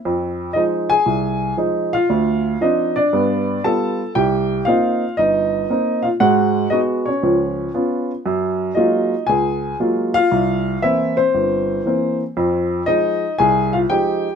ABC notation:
X:1
M:4/4
L:1/8
Q:"Swing" 1/4=117
K:Fm
V:1 name="Upright piano"
z2 e [Aa]3 z [Ff]- | [Ff]2 [Ee] [=D=d]3 [=A=a]2 | [Gg]2 [Ff]2 [Ee]3 [Ff] | [_G_g]2 [Ee] [Dd]3 z2 |
z2 [Ee]2 [Aa]2 z [Ff]- | [Ff]2 [=E=e] [Cc]4 z | z2 [Ee]2 [Aa] [Ff] [Gg]2 |]
V:2 name="Upright piano" clef=bass
F,,2 [F,A,E] z C,,2 [F,A,E] z | =D,,2 [F,C=D] z [G,,=B,]2 [G,B,F] z | C,,2 [B,CE] z G,,,2 [B,CE] z | [A,,A,]2 [A,_C_G] z [D,,F,]2 [CDF] z |
_G,,2 [_G,A,B,F] z D,,2 [G,A,B,F] z | C,,2 [=E,B,C] z G,,,2 [E,B,C] z | [F,,F,]2 [F,A,] z C,,2 [F,A,E] z |]